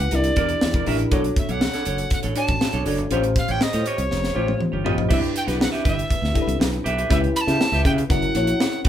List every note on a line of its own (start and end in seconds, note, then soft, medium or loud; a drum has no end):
0.00 0.14 C#4 medium
0.00 0.12 E4 medium
0.00 0.12 G4 medium
0.00 0.13 B4 medium
0.00 0.17 F#5 medium
0.00 muted clean electric guitar stroke soft
0.11 0.29 C2 loud
0.11 0.32 D4 medium
0.11 0.32 E4 medium
0.11 0.32 G4 medium
0.11 0.32 A#4 medium
0.11 0.88 D5 medium
0.11 closed hi-hat medium
0.24 muted clean electric guitar stroke medium
0.24 closed hi-hat medium
0.36 0.54 E2 medium
0.36 0.74 D4 medium
0.36 0.56 E4 medium
0.36 0.74 E4 medium
0.36 0.74 G4 medium
0.36 0.49 A#4 medium
0.36 0.74 A#4 medium
0.36 0.48 D5 medium
0.36 kick medium
0.36 closed hi-hat medium
0.49 muted clean electric guitar stroke soft
0.49 closed hi-hat soft
0.61 0.80 E2 medium
0.61 muted clean electric guitar stroke soft
0.61 snare loud
0.73 0.85 E4 medium
0.73 0.86 A#4 medium
0.73 0.87 D5 medium
0.73 kick medium
0.73 closed hi-hat soft
0.86 1.05 A1 medium
0.86 1.05 D4 medium
0.86 1.06 E4 medium
0.86 1.05 E4 medium
0.86 1.05 G4 medium
0.86 0.99 A#4 medium
0.86 1.06 A#4 medium
0.86 0.98 E5 medium
0.86 open hi-hat medium
0.99 muted clean electric guitar stroke soft
0.99 closed hi-hat soft
1.11 1.29 B1 medium
1.11 1.31 D4 medium
1.11 1.86 D4 medium
1.11 1.86 F#4 medium
1.11 1.24 A4 medium
1.11 1.86 A4 medium
1.11 1.22 C#5 medium
1.11 1.86 C#5 medium
1.11 kick medium
1.11 closed hi-hat medium
1.24 muted clean electric guitar stroke medium
1.24 closed hi-hat medium
1.36 1.53 E5 medium
1.36 muted clean electric guitar stroke soft
1.36 kick loud
1.36 closed hi-hat medium
1.49 1.67 B1 medium
1.49 1.60 D4 soft
1.49 1.60 A4 medium
1.49 1.61 C#5 medium
1.49 2.13 F#5 medium
1.49 closed hi-hat soft
1.61 muted clean electric guitar stroke soft
1.61 snare loud
1.73 1.84 D4 medium
1.73 1.85 A4 medium
1.73 1.86 C#5 medium
1.73 snare soft
1.73 closed hi-hat medium
1.85 2.04 F#1 medium
1.85 2.01 D4 soft
1.85 1.98 A4 medium
1.85 1.98 C#5 medium
1.85 closed hi-hat medium
1.98 muted clean electric guitar stroke soft
1.98 closed hi-hat medium
2.10 2.19 F#5 medium
2.10 muted clean electric guitar stroke soft
2.10 kick medium
2.10 closed hi-hat medium
2.23 2.33 A1 medium
2.23 2.34 D4 medium
2.23 2.35 A4 medium
2.23 2.36 C#5 medium
2.23 closed hi-hat medium
2.35 2.51 D4 medium
2.35 2.73 D4 medium
2.35 2.74 F#4 medium
2.35 2.48 A4 medium
2.35 2.74 A4 medium
2.35 2.74 C#5 medium
2.35 2.48 D5 medium
2.35 2.83 A5 medium
2.35 closed hi-hat medium
2.48 2.58 A1 medium
2.48 muted clean electric guitar stroke soft
2.48 kick medium
2.48 closed hi-hat medium
2.61 muted clean electric guitar stroke soft
2.61 snare loud
2.73 2.82 B1 medium
2.73 2.85 D4 medium
2.73 2.86 A4 medium
2.73 2.86 C#5 medium
2.73 closed hi-hat soft
2.86 2.98 F#1 medium
2.86 3.01 D4 medium
2.86 3.05 D4 medium
2.86 3.05 F#4 medium
2.86 3.05 A4 medium
2.86 2.98 A4 medium
2.86 2.97 C#5 medium
2.86 3.05 D5 medium
2.86 open hi-hat medium
2.98 3.07 G1 medium
2.98 muted clean electric guitar stroke soft
2.98 closed hi-hat soft
3.11 3.37 A1 medium
3.11 3.85 C#4 medium
3.11 3.85 F4 medium
3.11 3.31 F4 medium
3.11 3.86 G4 medium
3.11 3.24 G4 medium
3.11 3.86 C5 medium
3.11 3.23 C#5 loud
3.11 closed hi-hat medium
3.24 muted clean electric guitar stroke soft
3.24 closed hi-hat soft
3.36 3.53 F5 loud
3.36 muted clean electric guitar stroke soft
3.36 kick medium
3.36 closed hi-hat medium
3.48 3.57 A1 medium
3.48 3.60 F4 soft
3.48 3.61 G4 medium
3.48 3.61 C#5 medium
3.48 3.64 G5 loud
3.48 closed hi-hat medium
3.61 3.89 D#5 medium
3.61 muted clean electric guitar stroke soft
3.61 snare loud
3.73 3.82 A2 medium
3.73 3.85 F4 medium
3.73 3.86 G4 medium
3.73 3.87 C#5 medium
3.73 snare soft
3.73 closed hi-hat medium
3.86 4.01 F4 medium
3.86 3.98 G4 medium
3.86 4.61 C#5 medium
3.86 3.98 D#5 medium
3.86 closed hi-hat medium
3.98 4.07 C2 medium
3.98 muted clean electric guitar stroke soft
3.98 closed hi-hat medium
4.11 4.29 F1 medium
4.11 snare medium
4.23 muted clean electric guitar stroke soft
4.23 snare medium
4.35 4.53 A1 medium
4.35 4.73 C#4 medium
4.35 4.55 F4 medium
4.35 4.73 F4 medium
4.35 4.47 G4 medium
4.35 4.73 G4 medium
4.35 4.73 C5 medium
4.35 4.46 C#5 medium
4.47 muted clean electric guitar stroke soft
4.47 high tom medium
4.60 muted clean electric guitar stroke soft
4.60 mid tom medium
4.72 4.85 G1 medium
4.72 4.83 F4 soft
4.72 4.84 G4 medium
4.72 4.85 C#5 medium
4.84 4.94 A1 medium
4.84 5.04 C#4 medium
4.84 5.04 F4 medium
4.84 4.97 G4 medium
4.84 5.04 G4 medium
4.84 4.97 D#5 medium
4.84 5.04 D#5 medium
4.84 floor tom medium
4.97 5.07 A#1 medium
4.97 muted clean electric guitar stroke soft
4.97 floor tom medium
5.09 5.20 C2 loud
5.09 5.38 D4 medium
5.09 5.38 E4 medium
5.09 5.29 G4 medium
5.09 5.38 G4 medium
5.09 5.21 B4 medium
5.09 5.39 B4 medium
5.09 5.21 E5 medium
5.09 kick loud
5.09 crash medium
5.13 5.19 E5 medium
5.22 muted clean electric guitar stroke soft
5.22 closed hi-hat soft
5.35 5.43 G5 loud
5.35 muted clean electric guitar stroke soft
5.35 closed hi-hat medium
5.47 5.65 B1 medium
5.47 6.12 D4 medium
5.47 6.12 E4 medium
5.47 6.13 G4 medium
5.47 5.57 G4 medium
5.47 5.58 B4 medium
5.47 6.13 B4 medium
5.47 5.60 F#5 medium
5.47 snare soft
5.47 closed hi-hat soft
5.59 muted clean electric guitar stroke soft
5.59 snare loud
5.63 5.69 F#5 medium
5.72 5.83 G4 medium
5.72 5.84 B4 medium
5.72 5.84 E5 medium
5.72 snare soft
5.72 closed hi-hat soft
5.84 6.03 G1 medium
5.84 6.00 G4 medium
5.84 5.96 B4 medium
5.84 5.95 E5 medium
5.84 kick medium
5.84 closed hi-hat medium
5.89 6.58 E5 medium
5.97 muted clean electric guitar stroke soft
5.97 closed hi-hat soft
6.09 muted clean electric guitar stroke soft
6.09 kick medium
6.09 closed hi-hat medium
6.22 6.31 D2 medium
6.22 muted clean electric guitar stroke soft
6.22 snare soft
6.34 6.90 D4 medium
6.34 6.90 E4 medium
6.34 6.91 G4 medium
6.34 6.41 A4 medium
6.34 kick medium
6.34 closed hi-hat medium
6.41 6.94 B4 medium
6.47 6.56 C2 medium
6.47 muted clean electric guitar stroke soft
6.47 closed hi-hat medium
6.59 6.78 B1 medium
6.59 muted clean electric guitar stroke soft
6.59 snare loud
6.72 muted clean electric guitar stroke soft
6.72 closed hi-hat soft
6.84 7.03 B1 medium
6.84 6.98 G4 medium
6.84 6.97 B4 medium
6.84 6.96 E5 medium
6.84 closed hi-hat medium
6.97 7.09 G4 soft
6.97 7.09 B4 medium
6.97 7.10 E5 medium
6.97 closed hi-hat soft
7.10 7.28 C#2 loud
7.10 7.38 C#4 medium
7.10 7.38 E4 medium
7.10 7.29 G4 medium
7.10 7.38 G4 medium
7.10 7.22 B4 medium
7.10 7.38 B4 medium
7.10 7.22 E5 medium
7.10 7.18 E5 medium
7.10 kick loud
7.10 closed hi-hat medium
7.23 muted clean electric guitar stroke soft
7.23 closed hi-hat soft
7.36 7.42 B5 loud
7.36 muted clean electric guitar stroke soft
7.36 closed hi-hat medium
7.41 7.82 A5 loud
7.47 7.56 C#3 medium
7.47 8.08 C#4 medium
7.47 8.09 E4 medium
7.47 8.10 G4 medium
7.47 7.59 G4 medium
7.47 7.60 B4 medium
7.47 8.11 B4 medium
7.47 7.60 E5 medium
7.47 snare soft
7.47 closed hi-hat soft
7.61 muted clean electric guitar stroke soft
7.61 snare loud
7.72 7.81 C#2 medium
7.72 7.84 G4 medium
7.72 7.85 B4 medium
7.72 7.85 E5 medium
7.72 snare soft
7.72 closed hi-hat soft
7.85 8.02 C#3 medium
7.85 8.00 G4 medium
7.85 7.99 B4 medium
7.85 7.98 E5 medium
7.85 7.92 G5 medium
7.85 kick medium
7.85 closed hi-hat medium
7.98 muted clean electric guitar stroke soft
7.98 closed hi-hat medium
8.10 8.28 F#1 loud
8.10 8.30 C#4 medium
8.10 8.30 E4 medium
8.10 8.30 F#4 medium
8.10 8.30 A#4 medium
8.10 8.81 F#5 medium
8.10 muted clean electric guitar stroke soft
8.10 kick medium
8.10 closed hi-hat medium
8.22 muted clean electric guitar stroke soft
8.22 closed hi-hat soft
8.35 8.52 A#1 medium
8.35 8.89 C#4 medium
8.35 8.89 E4 medium
8.35 8.89 F#4 medium
8.35 8.89 C#5 medium
8.35 closed hi-hat medium
8.47 muted clean electric guitar stroke soft
8.47 closed hi-hat soft
8.60 muted clean electric guitar stroke soft
8.60 snare loud
8.73 muted clean electric guitar stroke soft
8.73 closed hi-hat soft
8.85 8.89 A#1 medium
8.85 8.89 F#4 medium
8.85 kick medium
8.85 closed hi-hat medium